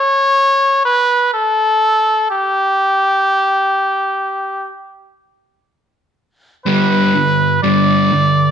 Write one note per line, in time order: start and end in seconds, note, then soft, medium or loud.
0.00 0.81 C#5 medium
0.85 1.30 B4 medium
1.34 2.27 A4 medium
2.30 4.69 G4 medium
6.66 7.12 G2 medium
6.66 7.12 D3 medium
6.66 7.13 G3 medium
6.66 7.59 B4 medium
7.14 7.58 G2 medium
7.14 7.59 D3 medium
7.63 8.09 G2 medium
7.63 8.10 D3 medium
7.63 8.10 G3 medium
7.63 8.51 D5 medium
8.12 8.51 G2 medium
8.12 8.51 D3 medium